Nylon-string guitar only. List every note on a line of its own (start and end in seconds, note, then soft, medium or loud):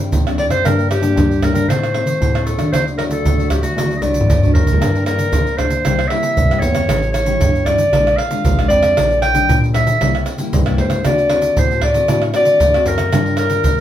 0.00 0.10 D#3 medium
0.00 0.21 G3 medium
0.00 0.21 C4 medium
0.00 0.22 D4 medium
0.13 0.62 D#3 medium
0.27 0.61 G3 medium
0.27 0.61 C4 medium
0.27 0.61 D4 medium
0.65 1.14 G2 medium
0.65 0.89 G3 medium
0.65 0.89 A#3 medium
0.65 0.89 D4 medium
1.02 1.38 G3 medium
1.02 1.38 A#3 medium
1.02 1.38 D4 medium
1.17 1.66 D3 medium
1.42 1.64 G3 medium
1.42 1.64 A#3 medium
1.42 1.65 D4 medium
1.69 2.18 A2 medium
1.69 1.84 A3 medium
1.69 1.84 C4 medium
1.69 1.85 D#4 medium
1.94 2.29 A3 medium
1.94 2.29 C4 medium
1.94 2.30 D#4 medium
2.21 2.70 A2 medium
2.35 2.56 A3 medium
2.35 2.56 C4 medium
2.35 2.56 D#4 medium
2.58 2.96 F#3 medium
2.58 2.97 A3 medium
2.58 2.97 D4 medium
2.73 3.22 D3 medium
2.98 3.33 F#3 medium
2.98 3.33 A3 medium
2.98 3.33 D4 medium
3.25 3.74 A2 soft
3.39 3.73 F#3 medium
3.39 3.73 A3 medium
3.39 3.73 D4 medium
3.77 4.26 D3 medium
3.77 3.99 F#3 medium
3.77 3.99 A3 soft
3.77 3.99 D4 medium
4.02 4.37 F#3 medium
4.02 4.37 A3 medium
4.02 4.38 D4 medium
4.29 4.78 A2 medium
4.42 4.64 F#3 medium
4.42 4.64 A3 medium
4.42 4.64 D4 medium
4.67 4.93 F3 medium
4.67 4.94 A#3 medium
4.67 4.94 D4 medium
4.80 5.30 G2 medium
4.94 5.03 F3 medium
4.94 5.03 A#3 medium
4.94 5.03 D4 medium
5.06 5.54 F3 medium
5.06 5.54 A#3 medium
5.06 5.55 D4 medium
5.33 5.83 D3 medium
5.58 5.75 F3 medium
5.58 5.75 A#3 medium
5.58 5.76 D4 medium
5.85 6.35 C3 medium
5.85 6.00 G3 medium
5.85 6.01 A#3 medium
5.85 6.01 E4 medium
6.11 6.35 G3 medium
6.11 6.35 A#3 medium
6.11 6.36 E4 medium
6.38 6.87 G2 medium
6.52 6.73 G3 medium
6.52 6.73 A#3 medium
6.52 6.73 E4 medium
6.75 6.97 G3 medium
6.75 6.97 C#4 medium
6.75 6.98 E4 medium
6.90 7.39 A2 medium
7.27 7.62 G3 medium
7.27 7.62 C#4 medium
7.27 7.63 E4 medium
7.42 7.91 E3 medium
7.67 7.82 G3 medium
7.67 7.83 C#4 medium
7.67 7.83 E4 medium
7.94 8.43 A#2 medium
7.94 8.18 G#3 soft
7.94 8.18 D4 medium
7.94 8.18 F4 medium
8.31 8.53 G#3 medium
8.31 8.54 D4 medium
8.31 8.54 F4 medium
8.46 8.95 F3 medium
8.59 8.93 G#3 medium
8.59 8.94 D4 medium
8.59 8.94 F4 medium
8.97 9.46 A#2 medium
8.97 9.32 G3 medium
8.97 9.32 D4 medium
8.97 9.32 D#4 medium
9.34 9.70 G3 medium
9.34 9.70 D4 medium
9.34 9.70 D#4 medium
9.49 9.98 A#2 medium
9.74 9.90 G3 medium
9.74 9.90 D4 medium
9.74 9.90 D#4 medium
10.01 10.50 C3 medium
10.01 10.25 G3 medium
10.01 10.26 A#3 medium
10.01 10.26 E4 medium
10.38 10.61 G3 medium
10.38 10.61 A#3 medium
10.38 10.61 E4 medium
10.53 11.02 G2 medium
10.66 11.01 G3 medium
10.66 11.01 A#3 medium
10.66 11.01 E4 medium
11.05 11.54 D3 medium
11.05 11.27 A3 medium
11.05 11.27 C4 medium
11.05 11.27 F#4 medium
11.30 11.65 A3 medium
11.30 11.66 C4 medium
11.30 11.66 F#4 medium
11.57 12.06 A2 medium
11.71 11.92 A3 medium
11.71 11.92 C4 medium
11.71 11.92 F#4 medium
11.94 12.04 A3 medium
11.94 12.04 C4 medium
11.94 12.04 F#4 medium
12.09 12.58 D3 medium
12.09 12.24 A3 medium
12.09 12.24 C4 medium
12.09 12.24 F#4 medium
12.34 12.59 A3 medium
12.34 12.59 C4 medium
12.34 12.59 F#4 medium
12.61 13.10 A2 medium
12.74 13.09 A3 medium
12.74 13.09 C4 medium
12.74 13.09 F#4 medium
13.12 13.62 G3 medium
13.12 13.37 D4 medium
13.12 13.37 F4 medium
13.12 13.38 A#4 medium
13.51 13.80 D4 medium
13.51 13.80 F4 medium
13.51 13.80 A#4 medium